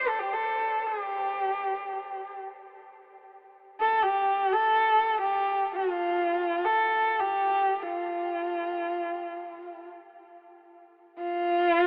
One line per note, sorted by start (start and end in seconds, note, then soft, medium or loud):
0.08 0.21 A4 medium
0.19 0.34 G4 medium
0.32 0.88 A4 medium
0.86 2.36 G4 medium
3.80 4.04 A4 medium
4.02 4.54 G4 medium
4.53 5.20 A4 medium
5.21 5.71 G4 medium
5.75 6.66 F4 medium
6.65 7.21 A4 medium
7.20 7.83 G4 medium
7.82 9.88 F4 medium
11.19 11.87 F4 loud